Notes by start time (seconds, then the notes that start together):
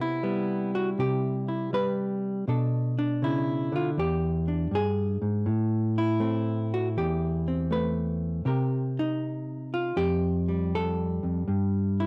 Already playing: C3 B3
0.01 E4
0.23 G3 B3
0.75 F#4
0.99 C3 G4
1.48 E4
1.73 G3 B4
2.48 B2 D4 A4
2.98 D4
3.22 C#3 E4
3.72 D3 F4
3.97 E2 G4
4.48 D4
4.71 G2 G#4
5.22 G#2
5.46 A2
5.98 E4
6.20 A3 C4
6.74 F#4
6.97 E2 G4
7.48 C4
7.71 A3 B4
8.45 C3 G4 A#4
8.99 D#4
9.74 F4
9.97 F2 G4
10.49 G3
10.75 A4
11.23 F2
11.48 G2
12.00 E4